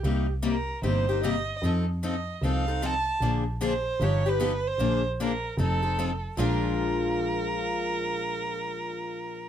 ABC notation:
X:1
M:4/4
L:1/16
Q:"Swing" 1/4=152
K:Bbmix
V:1 name="Violin"
z4 B4 c4 e4 | z4 e4 f4 =a4 | z4 c4 _d2 =B4 c2- | c2 z2 B4 =A6 z2 |
B16- | B16 |]
V:2 name="Steel-string acoustic guitar"
G3 z12 z | z16 | z16 | z16 |
F16- | F16 |]
V:3 name="Steel-string acoustic guitar"
[C,G,B,EG]2 z2 [C,G,B,EG]2 z2 [C,G,B,EG]2 [B,EG]2 [C,G,B,EG]2 z2 | [F,CE=A]2 z2 [F,CEA]2 z2 [F,CEA]2 [CEA]2 [F,CEA]2 z2 | [D,F,B,DA]2 z2 [D,F,B,DA]2 z2 [F,=B,^DG]2 [B,DG]2 [F,B,DG]2 z2 | [D,F,B,DA]2 z2 [D,F,B,DA]2 z2 [F,CE=A]2 [CEA]2 [F,CEA]2 z2 |
[B,,F,A,DFB]16- | [B,,F,A,DFB]16 |]
V:4 name="Double bass" clef=bass
C,,8 G,,,8 | F,,8 C,,8 | B,,,8 G,,,8 | B,,,8 F,,,8 |
B,,,16- | B,,,16 |]